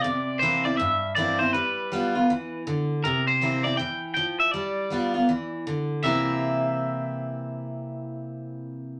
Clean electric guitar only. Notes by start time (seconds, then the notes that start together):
0.01 D5
0.39 C5
0.65 D5
0.77 E5
1.15 D5
1.39 C5
1.53 B4
3.04 A#4
3.27 C5
3.64 D5
3.77 G5
4.14 G5
4.40 E5
4.51 D5
6.04 E5